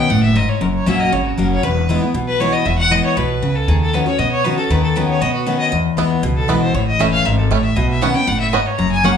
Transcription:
Already playing: fiddle G5
0.10 upright bass F#1, steel-string acoustic guitar A2, fiddle F#5
0.23 fiddle E5
0.36 steel-string acoustic guitar G#2, fiddle D#5
0.49 fiddle C#5
0.61 upright bass F#1, steel-string acoustic guitar F#2, fiddle A#4
0.74 fiddle C#5
0.86 upright bass A#1, steel-string acoustic guitar F#3 A#3 C#4 F#4, fiddle E5
1.00 fiddle D#5
1.12 upright bass G#1, steel-string acoustic guitar C#3, fiddle C#5
1.26 fiddle F#4
1.38 upright bass F#1, steel-string acoustic guitar F#3 A#3 C#4 F#4, fiddle A#4
1.51 fiddle C#5
1.63 upright bass E1, steel-string acoustic guitar E2, fiddle B4
1.89 steel-string acoustic guitar E3 G#3 B3 E4
2.02 steel-string acoustic guitar B3 E4
2.14 upright bass B1, steel-string acoustic guitar B2
2.27 fiddle B4
2.40 steel-string acoustic guitar E3 G#3 B3 E4, fiddle C#5
2.53 fiddle D#5
2.65 upright bass E1, steel-string acoustic guitar E2, fiddle E5
2.78 fiddle F#5
2.90 steel-string acoustic guitar E3 G#3 B3 E4, fiddle D#5
3.04 fiddle C#5
3.17 upright bass B1, steel-string acoustic guitar B2, fiddle B4
3.42 upright bass C#2, steel-string acoustic guitar C#3
3.55 fiddle A4
3.68 upright bass D#2, steel-string acoustic guitar D#3, fiddle G#4
3.81 fiddle A4
3.93 steel-string acoustic guitar D#3 B3 C#4 F#4, fiddle B4
4.06 steel-string acoustic guitar C#4 F#4, fiddle C#5
4.18 upright bass B2, steel-string acoustic guitar B3, fiddle D#5
4.31 fiddle C#5
4.44 steel-string acoustic guitar D#3 B3 C#4 F#4, fiddle B4
4.57 steel-string acoustic guitar C#4 F#4, fiddle A4
4.70 upright bass D#2, steel-string acoustic guitar D#3, fiddle B4
4.83 fiddle A4
4.96 steel-string acoustic guitar D#3 B3 C#4 F#4, fiddle B4
5.09 fiddle C#5
5.21 upright bass B2, steel-string acoustic guitar B3, fiddle D#5
5.34 fiddle F#4
5.46 steel-string acoustic guitar D#3 B3 C#4 F#4, fiddle B4
5.59 fiddle D#5
5.72 steel-string acoustic guitar E2, upright bass E2
5.97 upright bass D#2, steel-string acoustic guitar E3 G#3 B3 E4, five-string banjo B3 E4
6.23 upright bass C#2, steel-string acoustic guitar B2
6.36 fiddle A4
6.48 upright bass B1, steel-string acoustic guitar E3 G#3 B3 E4, five-string banjo B3 E4, fiddle B4
6.62 fiddle C5
6.74 upright bass A1, steel-string acoustic guitar A2, fiddle C#5
6.87 fiddle D#5
6.99 upright bass F#1, steel-string acoustic guitar E3 A3 C#4 E4, five-string banjo A3 C#4 E4, fiddle E5
7.13 fiddle F5
7.25 upright bass G#1, steel-string acoustic guitar G#2, fiddle E5
7.38 fiddle A4
7.50 upright bass A1, steel-string acoustic guitar A2, five-string banjo A3 C#4 E4, fiddle C#5
7.63 fiddle E5
7.76 upright bass B1, steel-string acoustic guitar B2, fiddle D#5
7.89 fiddle E5
8.01 steel-string acoustic guitar B2 D#3 B3 C#4, five-string banjo B3 C#4 F#4, fiddle F#5
8.14 steel-string acoustic guitar B3 C#4, fiddle G5
8.27 upright bass F#1, steel-string acoustic guitar A2, fiddle F#5
8.40 fiddle E5
8.53 steel-string acoustic guitar G#2, five-string banjo B3 C#4 F#4, fiddle D#5
8.66 fiddle C#5
8.79 upright bass F#1, steel-string acoustic guitar F#2, fiddle A#5
8.92 fiddle G#5
9.04 steel-string acoustic guitar F#3 A#3 C#4 F#4, five-string banjo A#3 C#4 F#4, fiddle F#5

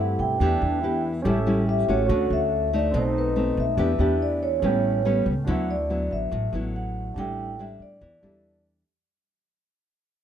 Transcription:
Already playing: upright bass G2, nylon-string guitar G2 A3 E4 G4, grand piano C4 G4 A4 E5, trombone E4
0.00 vibraphone F#5
0.19 upright bass B1, vibraphone G5
0.38 upright bass E2, nylon-string guitar E3 B3 D4, grand piano D4 G4 B4, trombone D4
0.42 nylon-string guitar G4, grand piano E5
0.62 upright bass E2
0.82 nylon-string guitar B3 D4 G4, trombone E4
1.22 upright bass A1, nylon-string guitar A2 G3 C#4, grand piano C#4 G4, trombone A4
1.26 nylon-string guitar E4, grand piano A4 E5
1.46 nylon-string guitar G3 C#4 E4
1.67 trombone G4, vibraphone E5
1.88 upright bass A1, nylon-string guitar A3 C#4 F#4, vibraphone C#5
2.06 upright bass D2, nylon-string guitar D3, trombone F#4, grand piano F#4 C#5
2.10 grand piano D4 A4
2.30 upright bass D2, vibraphone E5
2.68 vibraphone E5
2.73 nylon-string guitar A3 D#4, vibraphone D5
2.91 upright bass B1, nylon-string guitar B2, grand piano C4 A4 B4, trombone D#4
2.96 vibraphone C5, grand piano D#5
3.18 vibraphone B4
3.36 nylon-string guitar A3 C4 D#4
3.57 upright bass B1, vibraphone E5
3.76 upright bass E2, nylon-string guitar E3 B3 D4 G4, grand piano D4 G4 B4, trombone E4
3.81 grand piano E5
3.99 upright bass E2, nylon-string guitar B3 D4 G4
4.22 vibraphone D5
4.43 vibraphone C#5
4.59 upright bass A1, nylon-string guitar A2 G3, grand piano C#4 A4, trombone E4
4.63 nylon-string guitar B3 C#4, grand piano B4 G5
5.05 nylon-string guitar G3 B3 C#4
5.26 upright bass C#2
5.45 upright bass D2, nylon-string guitar D3 F#3 B3, grand piano D4 F#4 B4
5.49 nylon-string guitar E4, grand piano E5, vibraphone F#5
5.71 vibraphone D5
5.90 nylon-string guitar F#3 B3 E4
6.11 upright bass A1, vibraphone E5
6.32 upright bass A1, nylon-string guitar A2
6.53 upright bass A1, nylon-string guitar F#3 B3 E4
6.76 vibraphone F#5
7.14 upright bass A1, nylon-string guitar A2 G3 D4, grand piano D4 G4 A4
7.18 nylon-string guitar E4, grand piano E5, vibraphone G5
7.59 nylon-string guitar G3 D4 E4, vibraphone E5
7.80 upright bass E2, vibraphone D5
8.01 upright bass E2, nylon-string guitar E3
8.21 upright bass E2, nylon-string guitar G3 D4 E4, grand piano D4 G4 A4 E5

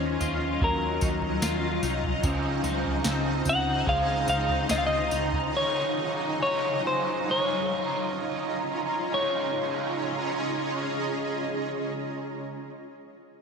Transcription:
Already playing: picked electric bass D#2, clean electric guitar D#3 C#4 D#4 C5, ambient pad F#3 C#4 F4 D#5
0.20 picked electric bass D#2, clean electric guitar F4, floor tom, tambourine
0.61 picked electric bass D#2, clean electric guitar F#3 A#4, kick, floor tom
1.01 picked electric bass D#2, clean electric guitar D#4, kick, tambourine
1.22 floor tom
1.42 picked electric bass D#2, clean electric guitar F4, snare, tambourine
1.83 picked electric bass C2, clean electric guitar D#4, tambourine
2.04 floor tom
2.23 picked electric bass C#2, ambient pad C#3 D#4 C5, overdriven electric guitar C#3 F3 C4 D#4 F4, clean electric guitar C#3, kick, floor tom, tambourine
2.63 picked electric bass C#2, clean electric guitar D#4, tambourine
2.85 floor tom
3.04 picked electric bass C#2, overdriven electric guitar F3 C4 D#4, clean electric guitar C4, snare, tambourine
3.45 picked electric bass C#2, clean electric guitar F#5, floor tom, tambourine
3.86 picked electric bass C#2, overdriven electric guitar C#3 F3 C4 D#4 F4, clean electric guitar G#3 F5, kick, floor tom
4.27 picked electric bass C#2, overdriven electric guitar C4 D#4 F4, clean electric guitar D#4 F5, tambourine
4.49 floor tom
4.69 picked electric bass C#2, clean electric guitar F4 D#5, snare, tambourine
4.78 clean electric guitar F5
4.86 clean electric guitar D#5
5.11 picked electric bass C#2, clean electric guitar D#4, tambourine
5.33 floor tom
5.53 overdriven electric guitar D#3 F#3 C#4 D#4 F4, ambient pad F#3, clean electric guitar C#5
6.39 overdriven electric guitar F#3 C#4 D#4 F4, clean electric guitar C#5
6.87 clean electric guitar C5
7.28 overdriven electric guitar C#3 G#3 D#4 F4, ambient pad C#4 F4 C#5, clean electric guitar C#5
7.73 overdriven electric guitar D#4 F4
9.11 overdriven electric guitar C#3 G#3, ambient pad C#4 F4 G#4 C#5 D#5, clean electric guitar C#5
9.17 overdriven electric guitar D#4 F4

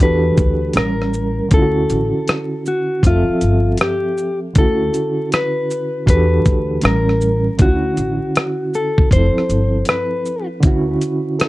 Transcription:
0.00 upright bass E2, reed electric piano E3 D4 F#4 G4 A4, clean electric guitar B4, closed hi-hat
0.37 upright bass D2, kick, closed hi-hat, shaker
0.73 upright bass A1, reed electric piano A2 G3 C#4 A#4, cross-stick, closed hi-hat
0.78 clean electric guitar A#4
1.02 cross-stick
1.14 shaker
1.49 upright bass D2, reed electric piano D3 C#4, kick, closed hi-hat
1.53 reed electric piano E4 F4, clean electric guitar A4
1.62 reed electric piano F#4
1.90 upright bass A1, closed hi-hat, shaker
2.27 cross-stick, closed hi-hat
2.66 clean electric guitar F#4, shaker
3.03 upright bass F1, reed electric piano F3 C4, clean electric guitar F4, kick, closed hi-hat
3.08 reed electric piano A4 E5
3.28 muted upright bass stroke
3.41 upright bass G1, closed hi-hat, shaker
3.77 cross-stick, closed hi-hat
3.82 clean electric guitar G4
4.18 shaker
4.54 upright bass D2, reed electric piano D3 C#4, kick, closed hi-hat
4.58 reed electric piano E4 F#4, clean electric guitar A4
4.94 closed hi-hat, shaker
5.32 clean electric guitar B4, cross-stick, closed hi-hat
5.71 shaker
6.06 upright bass E2, reed electric piano E3 D4 F#4 G4 A4, clean electric guitar B4, kick, closed hi-hat
6.46 upright bass D2, kick, closed hi-hat, shaker
6.81 upright bass A1, reed electric piano A2 G3 C#4 A#4, closed hi-hat
6.85 clean electric guitar A#4, cross-stick
7.09 cross-stick
7.21 shaker
7.58 upright bass D2, reed electric piano D3 C#4, clean electric guitar F#4, kick, closed hi-hat
7.62 reed electric piano E4 F4
7.71 reed electric piano F#4
7.97 upright bass A1, closed hi-hat, shaker
8.36 cross-stick, closed hi-hat
8.74 clean electric guitar A4, shaker
8.98 kick
9.11 upright bass F1, reed electric piano F3 C4, clean electric guitar C5, kick, closed hi-hat
9.16 reed electric piano E4 A4
9.35 muted upright bass stroke, cross-stick
9.49 upright bass G1, closed hi-hat, shaker
9.85 cross-stick, closed hi-hat
9.90 clean electric guitar B4
10.26 shaker
10.60 upright bass D2, reed electric piano D3 C#4, kick, closed hi-hat
10.65 reed electric piano E4 F#4
11.01 closed hi-hat, shaker
11.39 reed electric piano E4 A4, cross-stick, closed hi-hat

